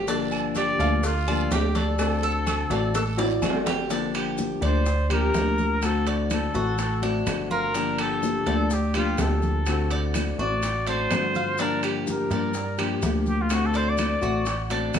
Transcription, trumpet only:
0.57 D5
1.05 F4
1.53 G4
1.76 A4
4.64 C5
5.13 A#4
5.85 A4
6.08 F#4
6.33 A4
7.51 A#4
8.00 A4
8.73 G4
8.96 F4
9.21 A4
10.40 D5
10.89 C5
11.62 A#4
11.84 G4
12.10 A#4
13.29 G4
13.41 F4
13.53 F#4
13.66 A4
13.77 C5
13.89 D5

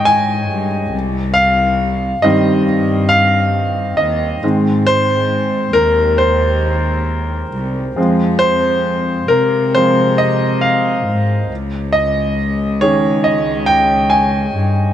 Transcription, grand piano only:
Already playing: D#3 G#3 C#4 C#5 D#5 G5
0.05 G#5
1.34 F5
2.22 D#3 G3 C4 D#5
3.09 F5
3.97 D#5
4.43 D#3 G#3 C4
4.87 C5
5.73 A#4
6.18 C5
7.96 F3 G#3 C4
8.39 C5
9.28 A#4
9.75 F3 G#3 C4 C5
10.18 D#5
10.61 F5
11.93 D#5
12.81 D#3 C#4 G#4 C#5
13.24 D#5
13.66 G5
14.10 G#5

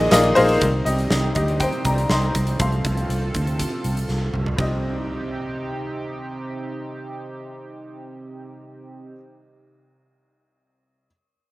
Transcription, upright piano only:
Already playing: A#2 A#3 D#4 F4 G#4 D#5
0.10 A#3 D#4 F4 G#4 D5 D#5
0.35 A#3 D#4 F4 G#4 C5
0.62 D#3 G3 C4
0.85 G4 D#5
1.35 G4 D#5
1.60 C5 G5
1.85 D5 A#5
2.09 D#5 C6
2.59 F3 A3 C4 F5 C6
4.57 C2 C4 D#4 G4 D#5

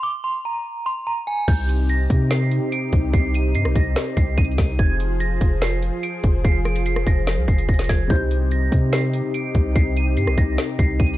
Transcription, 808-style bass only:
1.48 C2
2.10 C3
2.93 C2
3.14 C2
3.55 G2
3.65 C2
3.76 C2
4.17 C2
4.38 C2
4.58 C2
4.79 F1
5.41 F1
6.24 F1
6.45 F1
7.07 F1
7.38 C2
7.48 F1
7.69 F1
7.89 F1
8.10 C2
8.72 C3
9.55 C2
9.76 C2
10.17 G2
10.27 C2
10.38 C2
10.79 C2
11.00 C2

